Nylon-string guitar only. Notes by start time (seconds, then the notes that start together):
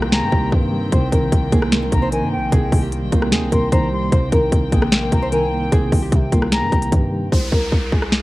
0.12 G#4
0.32 G4
0.92 C5
1.12 A#4
1.53 G#4
1.82 A#4
2.02 C5
2.12 A#4
2.52 G#4
2.82 G4
3.12 F4
3.32 G#4
3.52 A#4
3.72 C5
4.12 C5
4.32 A#4
4.72 G#4
5.02 A#4
5.22 C5
5.32 A#4
5.72 G#4
6.02 G4
6.32 F4
6.52 G#4
6.72 G4
7.32 C5
7.53 A#4
7.93 G#4